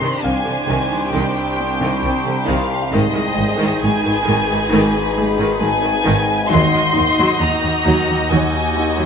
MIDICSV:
0, 0, Header, 1, 9, 480
1, 0, Start_track
1, 0, Tempo, 895522
1, 1574, Time_signature, 4, 2, 24, 8
1, 4855, End_track
2, 0, Start_track
2, 0, Title_t, "Violin section"
2, 0, Program_c, 0, 48
2, 0, Note_on_c, 0, 84, 58
2, 119, Note_on_c, 0, 80, 62
2, 134, Note_off_c, 0, 84, 0
2, 601, Note_on_c, 0, 79, 52
2, 606, Note_off_c, 0, 80, 0
2, 1327, Note_off_c, 0, 79, 0
2, 1330, Note_on_c, 0, 77, 57
2, 1572, Note_off_c, 0, 77, 0
2, 1575, Note_on_c, 0, 75, 62
2, 2048, Note_on_c, 0, 80, 79
2, 2054, Note_off_c, 0, 75, 0
2, 2756, Note_off_c, 0, 80, 0
2, 3010, Note_on_c, 0, 80, 77
2, 3470, Note_off_c, 0, 80, 0
2, 3486, Note_on_c, 0, 84, 78
2, 3966, Note_on_c, 0, 82, 65
2, 3970, Note_off_c, 0, 84, 0
2, 4450, Note_off_c, 0, 82, 0
2, 4456, Note_on_c, 0, 80, 60
2, 4855, Note_off_c, 0, 80, 0
2, 4855, End_track
3, 0, Start_track
3, 0, Title_t, "Felt piano"
3, 0, Program_c, 1, 0
3, 0, Control_c, 1, 64, 127
3, 129, Note_on_c, 1, 77, 31
3, 1550, Note_off_c, 1, 77, 0
3, 1584, Control_c, 1, 64, 0
3, 1661, Control_c, 1, 64, 127
3, 2776, Note_on_c, 1, 68, 38
3, 3504, Control_c, 1, 64, 0
3, 3597, Control_c, 1, 64, 127
3, 4193, Note_off_c, 1, 68, 0
3, 4855, End_track
4, 0, Start_track
4, 0, Title_t, "Violin section"
4, 0, Program_c, 2, 48
4, 0, Note_on_c, 2, 67, 37
4, 0, Note_on_c, 2, 72, 39
4, 1552, Note_off_c, 2, 67, 0
4, 1570, Note_on_c, 2, 68, 49
4, 2034, Note_off_c, 2, 72, 0
4, 2050, Note_on_c, 2, 71, 55
4, 3489, Note_on_c, 2, 66, 53
4, 3492, Note_off_c, 2, 68, 0
4, 3492, Note_off_c, 2, 71, 0
4, 3492, Note_on_c, 2, 75, 49
4, 4855, Note_off_c, 2, 66, 0
4, 4855, Note_off_c, 2, 75, 0
4, 4855, End_track
5, 0, Start_track
5, 0, Title_t, "Cello section"
5, 0, Program_c, 3, 48
5, 126, Note_on_c, 3, 60, 33
5, 272, Note_off_c, 3, 60, 0
5, 368, Note_on_c, 3, 48, 39
5, 514, Note_off_c, 3, 48, 0
5, 605, Note_on_c, 3, 48, 50
5, 751, Note_off_c, 3, 48, 0
5, 847, Note_on_c, 3, 60, 36
5, 993, Note_off_c, 3, 60, 0
5, 1090, Note_on_c, 3, 60, 41
5, 1235, Note_off_c, 3, 60, 0
5, 1332, Note_on_c, 3, 48, 39
5, 1477, Note_off_c, 3, 48, 0
5, 1571, Note_on_c, 3, 44, 65
5, 1716, Note_off_c, 3, 44, 0
5, 1812, Note_on_c, 3, 56, 45
5, 1957, Note_off_c, 3, 56, 0
5, 2051, Note_on_c, 3, 56, 44
5, 2196, Note_off_c, 3, 56, 0
5, 2293, Note_on_c, 3, 44, 49
5, 2437, Note_off_c, 3, 44, 0
5, 2533, Note_on_c, 3, 44, 63
5, 2677, Note_off_c, 3, 44, 0
5, 2776, Note_on_c, 3, 56, 47
5, 2919, Note_off_c, 3, 56, 0
5, 3013, Note_on_c, 3, 56, 47
5, 3157, Note_off_c, 3, 56, 0
5, 3250, Note_on_c, 3, 44, 42
5, 3395, Note_off_c, 3, 44, 0
5, 3493, Note_on_c, 3, 51, 67
5, 3637, Note_off_c, 3, 51, 0
5, 3729, Note_on_c, 3, 63, 45
5, 3875, Note_off_c, 3, 63, 0
5, 3967, Note_on_c, 3, 63, 43
5, 4113, Note_off_c, 3, 63, 0
5, 4206, Note_on_c, 3, 51, 43
5, 4352, Note_off_c, 3, 51, 0
5, 4454, Note_on_c, 3, 51, 53
5, 4598, Note_off_c, 3, 51, 0
5, 4692, Note_on_c, 3, 63, 37
5, 4837, Note_off_c, 3, 63, 0
5, 4855, End_track
6, 0, Start_track
6, 0, Title_t, "Viola section"
6, 0, Program_c, 4, 48
6, 0, Note_on_c, 4, 62, 36
6, 8, Note_on_c, 4, 51, 47
6, 120, Note_off_c, 4, 51, 0
6, 126, Note_on_c, 4, 51, 32
6, 169, Note_off_c, 4, 51, 0
6, 242, Note_on_c, 4, 50, 33
6, 285, Note_off_c, 4, 50, 0
6, 366, Note_on_c, 4, 51, 44
6, 481, Note_off_c, 4, 51, 0
6, 489, Note_on_c, 4, 51, 33
6, 532, Note_off_c, 4, 51, 0
6, 607, Note_on_c, 4, 51, 47
6, 722, Note_off_c, 4, 51, 0
6, 968, Note_on_c, 4, 51, 43
6, 1082, Note_off_c, 4, 51, 0
6, 1090, Note_on_c, 4, 51, 36
6, 1133, Note_off_c, 4, 51, 0
6, 1208, Note_on_c, 4, 50, 36
6, 1251, Note_off_c, 4, 50, 0
6, 1324, Note_on_c, 4, 51, 61
6, 1440, Note_off_c, 4, 51, 0
6, 1551, Note_off_c, 4, 62, 0
6, 1566, Note_on_c, 4, 63, 43
6, 1567, Note_on_c, 4, 51, 54
6, 1680, Note_off_c, 4, 51, 0
6, 1686, Note_on_c, 4, 51, 40
6, 1729, Note_off_c, 4, 51, 0
6, 1805, Note_on_c, 4, 51, 36
6, 1848, Note_off_c, 4, 51, 0
6, 1921, Note_on_c, 4, 51, 59
6, 2039, Note_off_c, 4, 51, 0
6, 2047, Note_on_c, 4, 51, 41
6, 2090, Note_off_c, 4, 51, 0
6, 2165, Note_on_c, 4, 51, 43
6, 2208, Note_off_c, 4, 51, 0
6, 2284, Note_on_c, 4, 51, 54
6, 2400, Note_off_c, 4, 51, 0
6, 2406, Note_on_c, 4, 51, 44
6, 2449, Note_off_c, 4, 51, 0
6, 2521, Note_on_c, 4, 51, 71
6, 2638, Note_off_c, 4, 51, 0
6, 2885, Note_on_c, 4, 51, 55
6, 2999, Note_off_c, 4, 51, 0
6, 3006, Note_on_c, 4, 51, 42
6, 3048, Note_off_c, 4, 51, 0
6, 3126, Note_on_c, 4, 51, 49
6, 3169, Note_off_c, 4, 51, 0
6, 3241, Note_on_c, 4, 51, 69
6, 3359, Note_off_c, 4, 51, 0
6, 3473, Note_off_c, 4, 63, 0
6, 3480, Note_on_c, 4, 63, 49
6, 3481, Note_on_c, 4, 54, 57
6, 3598, Note_off_c, 4, 54, 0
6, 3610, Note_on_c, 4, 54, 40
6, 3653, Note_off_c, 4, 54, 0
6, 3731, Note_on_c, 4, 51, 37
6, 3774, Note_off_c, 4, 51, 0
6, 3853, Note_on_c, 4, 54, 60
6, 3965, Note_off_c, 4, 54, 0
6, 3971, Note_on_c, 4, 54, 35
6, 4014, Note_off_c, 4, 54, 0
6, 4086, Note_on_c, 4, 51, 38
6, 4129, Note_off_c, 4, 51, 0
6, 4206, Note_on_c, 4, 54, 56
6, 4321, Note_off_c, 4, 54, 0
6, 4327, Note_on_c, 4, 54, 43
6, 4370, Note_off_c, 4, 54, 0
6, 4452, Note_on_c, 4, 54, 51
6, 4564, Note_off_c, 4, 54, 0
6, 4810, Note_on_c, 4, 54, 42
6, 4855, Note_off_c, 4, 54, 0
6, 4855, Note_off_c, 4, 63, 0
6, 4855, End_track
7, 0, Start_track
7, 0, Title_t, "Cello section"
7, 0, Program_c, 5, 48
7, 7, Note_on_c, 5, 48, 44
7, 50, Note_off_c, 5, 48, 0
7, 131, Note_on_c, 5, 48, 36
7, 173, Note_off_c, 5, 48, 0
7, 251, Note_on_c, 5, 48, 35
7, 294, Note_off_c, 5, 48, 0
7, 371, Note_on_c, 5, 48, 44
7, 413, Note_off_c, 5, 48, 0
7, 489, Note_on_c, 5, 48, 34
7, 532, Note_off_c, 5, 48, 0
7, 615, Note_on_c, 5, 48, 51
7, 658, Note_off_c, 5, 48, 0
7, 970, Note_on_c, 5, 48, 52
7, 1013, Note_off_c, 5, 48, 0
7, 1091, Note_on_c, 5, 48, 34
7, 1134, Note_off_c, 5, 48, 0
7, 1211, Note_on_c, 5, 48, 38
7, 1254, Note_off_c, 5, 48, 0
7, 1332, Note_on_c, 5, 48, 52
7, 1375, Note_off_c, 5, 48, 0
7, 1573, Note_on_c, 5, 44, 54
7, 1616, Note_off_c, 5, 44, 0
7, 1698, Note_on_c, 5, 44, 44
7, 1741, Note_off_c, 5, 44, 0
7, 1816, Note_on_c, 5, 44, 43
7, 1859, Note_off_c, 5, 44, 0
7, 1932, Note_on_c, 5, 44, 61
7, 1975, Note_off_c, 5, 44, 0
7, 2053, Note_on_c, 5, 44, 46
7, 2096, Note_off_c, 5, 44, 0
7, 2176, Note_on_c, 5, 44, 46
7, 2219, Note_off_c, 5, 44, 0
7, 2292, Note_on_c, 5, 44, 58
7, 2335, Note_off_c, 5, 44, 0
7, 2412, Note_on_c, 5, 44, 46
7, 2455, Note_off_c, 5, 44, 0
7, 2525, Note_on_c, 5, 44, 68
7, 2568, Note_off_c, 5, 44, 0
7, 2886, Note_on_c, 5, 44, 64
7, 2929, Note_off_c, 5, 44, 0
7, 3009, Note_on_c, 5, 44, 44
7, 3052, Note_off_c, 5, 44, 0
7, 3133, Note_on_c, 5, 44, 43
7, 3176, Note_off_c, 5, 44, 0
7, 3252, Note_on_c, 5, 44, 62
7, 3294, Note_off_c, 5, 44, 0
7, 3490, Note_on_c, 5, 39, 62
7, 3533, Note_off_c, 5, 39, 0
7, 3608, Note_on_c, 5, 39, 39
7, 3651, Note_off_c, 5, 39, 0
7, 3726, Note_on_c, 5, 39, 46
7, 3769, Note_off_c, 5, 39, 0
7, 3850, Note_on_c, 5, 39, 58
7, 3893, Note_off_c, 5, 39, 0
7, 3970, Note_on_c, 5, 39, 41
7, 4013, Note_off_c, 5, 39, 0
7, 4087, Note_on_c, 5, 39, 42
7, 4130, Note_off_c, 5, 39, 0
7, 4213, Note_on_c, 5, 39, 53
7, 4256, Note_off_c, 5, 39, 0
7, 4336, Note_on_c, 5, 39, 41
7, 4379, Note_off_c, 5, 39, 0
7, 4453, Note_on_c, 5, 39, 54
7, 4496, Note_off_c, 5, 39, 0
7, 4815, Note_on_c, 5, 39, 44
7, 4855, Note_off_c, 5, 39, 0
7, 4855, End_track
8, 0, Start_track
8, 0, Title_t, "Double bass section"
8, 0, Program_c, 6, 48
8, 137, Note_on_c, 6, 36, 34
8, 180, Note_off_c, 6, 36, 0
8, 374, Note_on_c, 6, 36, 51
8, 417, Note_off_c, 6, 36, 0
8, 613, Note_on_c, 6, 36, 50
8, 656, Note_off_c, 6, 36, 0
8, 1092, Note_on_c, 6, 36, 39
8, 1134, Note_off_c, 6, 36, 0
8, 1334, Note_on_c, 6, 36, 54
8, 1376, Note_off_c, 6, 36, 0
8, 1575, Note_on_c, 6, 32, 54
8, 1618, Note_off_c, 6, 32, 0
8, 1816, Note_on_c, 6, 32, 42
8, 1859, Note_off_c, 6, 32, 0
8, 2059, Note_on_c, 6, 32, 46
8, 2102, Note_off_c, 6, 32, 0
8, 2298, Note_on_c, 6, 32, 67
8, 2340, Note_off_c, 6, 32, 0
8, 2534, Note_on_c, 6, 32, 59
8, 2577, Note_off_c, 6, 32, 0
8, 3017, Note_on_c, 6, 32, 48
8, 3059, Note_off_c, 6, 32, 0
8, 3254, Note_on_c, 6, 32, 63
8, 3297, Note_off_c, 6, 32, 0
8, 3499, Note_on_c, 6, 39, 58
8, 3542, Note_off_c, 6, 39, 0
8, 3744, Note_on_c, 6, 39, 47
8, 3787, Note_off_c, 6, 39, 0
8, 3978, Note_on_c, 6, 39, 43
8, 4021, Note_off_c, 6, 39, 0
8, 4213, Note_on_c, 6, 39, 59
8, 4256, Note_off_c, 6, 39, 0
8, 4457, Note_on_c, 6, 39, 54
8, 4500, Note_off_c, 6, 39, 0
8, 4855, End_track
9, 0, Start_track
9, 0, Title_t, "Synth drone"
9, 0, Program_c, 7, 95
9, 0, Note_on_c, 7, 36, 64
9, 1554, Note_off_c, 7, 36, 0
9, 1569, Note_on_c, 7, 32, 68
9, 3491, Note_off_c, 7, 32, 0
9, 3500, Note_on_c, 7, 39, 64
9, 4855, Note_off_c, 7, 39, 0
9, 4855, End_track
0, 0, End_of_file